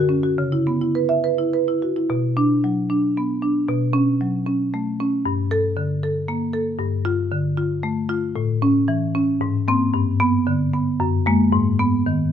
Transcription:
Already playing: D3 F#4
0.09 C#4
0.23 F#4
0.38 C#3
0.52 E4
0.67 B3
0.81 E4
0.95 B4
1.09 E5
1.24 B4
1.39 E4
1.53 B4
1.68 E4
1.82 F#4
1.96 E4
2.10 B2
2.37 D4
2.64 F#3
2.90 D4
3.17 B3
3.42 D4
3.68 B2
3.93 C#4
4.21 F#3
4.46 C#4
4.74 A3
5.00 C#4
5.26 G2
5.51 A4
5.77 D3
6.03 A4
6.28 A#3
6.53 A4
6.79 G2
7.05 F4
7.32 D3
7.57 F4
7.83 A3
8.09 F4
8.36 A2
8.62 C#4
8.88 E3
9.15 C#4
9.41 G#2
9.68 A#3 C4
9.94 G2
10.20 B3
10.47 D3
10.73 B3
11.00 F#2
11.26 G#3 A#3
11.52 G#2
11.79 B3
12.06 D#3

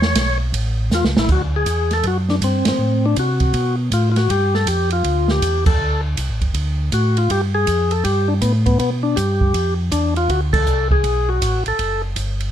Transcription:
Already playing: E2 C#5
0.02 snare
0.15 B1, kick, snare, hi-hat pedal, ride
0.54 A1, kick, ride
0.91 E2 F4, snare, hi-hat pedal
1.04 C#2, snare
1.17 A1 E4, snare
1.29 D2 F#4, kick, crash
1.56 G#4
1.66 E2, kick, hi-hat pedal, ride
1.91 A4, snare, ride
2.03 F#2 F#4, kick, ride
2.29 D4, snare
2.42 G2 C4, kick, hi-hat pedal, ride
2.65 G2 C4, snare, ride
2.79 A2
3.06 D4
3.16 C3 F#4, kick, hi-hat pedal, ride
3.40 kick, ride
3.54 B2, kick, ride
3.92 A2 F4, kick, hi-hat pedal, ride
4.12 F4
4.16 F#4, snare, ride
4.30 G2 G4, kick, ride
4.54 A4, snare
4.66 F2 G4, kick, hi-hat pedal, ride
4.90 F4, ride
5.04 D2, kick, ride
5.28 G4, snare
5.42 E2, kick, hi-hat pedal, ride
5.66 A4, kick, crash
5.79 D2
6.17 C2, kick, hi-hat pedal, ride
6.29 A1
6.41 F#1, kick, ride
6.54 D2, kick, ride
6.92 A2 F#4, kick, hi-hat pedal, ride
7.17 F4, ride
7.30 G2 G4, kick, ride
7.55 G#4
7.67 F2, kick, hi-hat pedal, ride
7.91 A4, ride
8.04 G2 G4, kick, ride
8.28 D4
8.42 A2 B3, kick, hi-hat pedal, ride
8.66 B3, kick, ride
8.79 B2 B3, kick, ride
9.03 D4
9.16 G2 G4, kick, hi-hat pedal, ride
9.41 kick
9.54 F2, kick, ride
9.92 E2 D4, kick, hi-hat pedal, ride
10.16 F4, ride
10.29 D2 F#4, kick, ride
10.53 A4, kick, crash
10.66 C2, hi-hat pedal
10.91 G#4, kick
11.04 B1, kick, ride
11.29 F#4
11.42 A1, kick, hi-hat pedal, ride
11.66 A1 A4, ride
11.79 F#1, kick, ride
12.16 G1, kick, hi-hat pedal, ride
12.40 ride

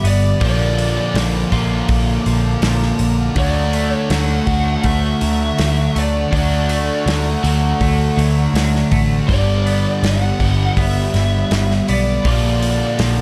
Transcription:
Already playing: G2 D3 G3 B3 D4 G4 F#5 B5 D6
0.04 G1 B3 D5, open hi-hat
0.40 A#1 A#2 D3 F3 A#3 D4 F4 F5 A5 A#5, kick, open hi-hat
0.45 D5
0.78 open hi-hat
1.14 A#1 F3, snare, open hi-hat
1.52 A#1 D3 F3 A#3 D4 F4, kick, open hi-hat
1.56 A#2
1.89 A#1, kick, open hi-hat
2.26 A#1 F3, open hi-hat
2.62 A#1 F3, snare, open hi-hat
2.82 snare
2.99 A#1, open hi-hat
3.36 D2 D3 F#3 A3 D4 F#4 D5 F#5 C#6, kick, open hi-hat
3.73 A3, open hi-hat
3.91 C#5
4.10 D2 F#3 F#5, snare, open hi-hat
4.46 D2 D3 F#3 A3 D4 F#4, kick, open hi-hat
4.84 D2 A3 E5, kick, open hi-hat
5.21 D2 F#3, open hi-hat
5.58 D2 F#3, snare, open hi-hat
5.95 D2 A3 D5, open hi-hat
6.31 D2 D3 F#3 A3 D4 F#4 D5, kick, open hi-hat
6.69 A3, open hi-hat
7.06 D2 F#3, snare, open hi-hat
7.43 D2 D3 F#3 A3 D4 F#4, open hi-hat
7.81 D2 A3, kick, open hi-hat
8.17 D2 F#3, open hi-hat
8.54 D2 F#3, snare, open hi-hat
8.75 snare
8.91 A1 A3, kick, open hi-hat
9.28 G1 G2 D3 G3 B3 D4 G4 D5 F#5 B5, kick, open hi-hat
9.66 B3, open hi-hat
10.03 G1 F#5, snare, open hi-hat
10.40 G1 G2 D3 G3 B3 D4 G4, kick, open hi-hat
10.77 G1 B3 E5, kick, open hi-hat
11.14 G1, snare, open hi-hat
11.51 G1, snare, open hi-hat
11.71 snare
11.88 B1 B3 D5, open hi-hat
12.24 A#1 A#2 D3 F3 A#3 D4 F4 D5 F5 A5 A#5, kick, open hi-hat
12.62 open hi-hat
12.99 A#1 F3, snare, open hi-hat

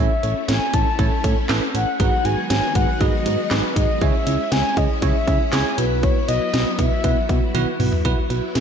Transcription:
Already playing: A3 C#4 E4 A4 C#5
0.00 E5
0.23 A1 C#4 E4 A4 C#5, closed hi-hat
0.48 A1 C#4 E4 A4 C#5 G#5, snare, closed hi-hat
0.74 A1 C#4 E4 A4 C#5 A5, kick, closed hi-hat
0.99 A1 C#4 E4 A4 C#5, kick, closed hi-hat
1.24 A2 C#4 E4 A4 C#5, kick, closed hi-hat
1.49 A1 C#4 E4 A4 B4, snare, clap, closed hi-hat
1.74 A1 C#4 E4 A4 C#5 F#5, closed hi-hat
2.00 G#1 D#3 F#3 G#3 B3 D#4 F#4 G#4 B4 F#5, kick, closed hi-hat
2.25 G#1 D#4 F#4 G#4 B4 G#5, closed hi-hat
2.50 G#1 D#4 F#4 G#4 C#5 G#5, snare, closed hi-hat
2.75 G#1 D#4 F#4 G#4 B4 F#5, kick, closed hi-hat
3.01 G#1 D#4 F#4 G#4 B4 D#5, kick, closed hi-hat
3.26 G#2 D#4 F#4 G#4 B4, closed hi-hat
3.51 G#1 D#4 F#4 G#4 B4, snare, clap, closed hi-hat
3.76 G#1 D#4 F#4 G#4 B4 D#5, kick, closed hi-hat
4.01 C#2 C#4 E4 G#4 C#5 E5, kick, closed hi-hat
4.27 C#2 C#4 E4 G#4 C#5, closed hi-hat
4.52 C#2 C#4 E4 G#4 C#5 G#5, snare, closed hi-hat
4.77 C#2 C#4 E4 G#4 C#5 D#5, kick, closed hi-hat
5.02 C#2 C#4 E4 G#4 C#5 E5, kick, closed hi-hat
5.27 C#3 C#4 E4 G#4 C#5, kick, closed hi-hat
5.53 C#2 C#4 E4 G#4 C#5 G#5, snare, clap, closed hi-hat
5.78 B1 F#3 B3 E4 F#4 B4, closed hi-hat
6.03 C#5, kick, closed hi-hat
6.28 B1 B3 E4 F#4 B4 D#5, closed hi-hat
6.54 B1 B3 E4 F#4 B4, snare, closed hi-hat
6.79 B1 B3 E4 F#4 B4 E5, kick, closed hi-hat
7.04 B1 B3 E4 F#4 B4, kick, closed hi-hat
7.29 B2 B3 E4 F#4 B4, kick, closed hi-hat
7.55 B1 B3 E4 F#4 B4, closed hi-hat, high tom
7.80 B1 B3 E4 F#4 B4, mid tom, open hi-hat
7.92 floor tom
8.05 B1 F#3 B3 E4 F#4 B4, kick, closed hi-hat
8.30 B1 E4 F#4 B4, closed hi-hat
8.55 B1 E4 F#4 G#4, snare, closed hi-hat

